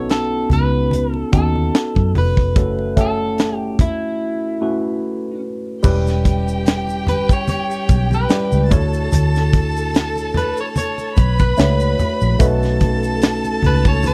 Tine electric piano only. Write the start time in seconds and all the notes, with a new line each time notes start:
Already playing: B3 C#4 D#4 F#4 A4
1.32 B3 C#4 D#4 F#4 A4
2.56 A3 C#4 E4 F#4 A4
2.96 A3 C#4 E4 F#4 A4
4.61 A3 C#4 E4 F#4 B4
5.83 G3 C#4 E4 G4 B4
8.29 G3 C#4 E4 G4 B4
8.69 A3 D4 E4 F#4 C#5
11.57 A3 D4 E4 F#4 C#5
12.39 A3 C#4 D#4 F#4 B4